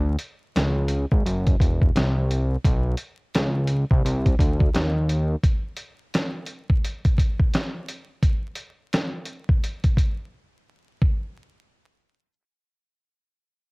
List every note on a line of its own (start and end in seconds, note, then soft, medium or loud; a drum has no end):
0.00 0.16 D2 loud
0.18 closed hi-hat medium
0.56 1.06 C#2 loud
0.56 snare loud
0.56 closed hi-hat medium
0.88 closed hi-hat medium
1.12 1.23 G#1 medium
1.12 kick loud
1.26 1.56 F#1 loud
1.26 closed hi-hat medium
1.47 kick medium
1.47 closed hi-hat soft
1.60 1.91 E1 medium
1.60 kick medium
1.60 closed hi-hat medium
1.82 kick medium
1.96 2.57 C2 loud
1.96 snare loud
1.96 closed hi-hat medium
2.31 closed hi-hat medium
2.65 2.95 B1 loud
2.65 kick loud
2.65 closed hi-hat medium
2.97 closed hi-hat medium
3.35 3.85 C#2 medium
3.35 snare loud
3.35 closed hi-hat medium
3.67 closed hi-hat medium
3.91 4.02 C2 loud
3.91 kick loud
4.05 4.35 C2 loud
4.05 closed hi-hat medium
4.26 kick medium
4.26 closed hi-hat soft
4.39 4.70 D2 medium
4.39 kick medium
4.39 closed hi-hat medium
4.61 kick medium
4.75 5.36 D#2 loud
4.75 snare loud
4.75 closed hi-hat medium
5.09 closed hi-hat medium
5.43 kick loud
5.43 closed hi-hat medium
5.77 closed hi-hat medium
6.14 snare loud
6.14 closed hi-hat medium
6.47 closed hi-hat medium
6.70 kick loud
6.85 closed hi-hat medium
7.05 kick medium
7.05 closed hi-hat soft
7.18 kick medium
7.18 closed hi-hat medium
7.39 kick medium
7.54 snare loud
7.54 closed hi-hat medium
7.88 closed hi-hat medium
8.23 kick loud
8.23 closed hi-hat medium
8.55 closed hi-hat medium
8.93 snare loud
8.93 closed hi-hat medium
9.25 closed hi-hat medium
9.49 kick loud
9.64 closed hi-hat medium
9.84 kick medium
9.84 closed hi-hat soft
9.97 kick medium
9.97 closed hi-hat medium
11.02 kick medium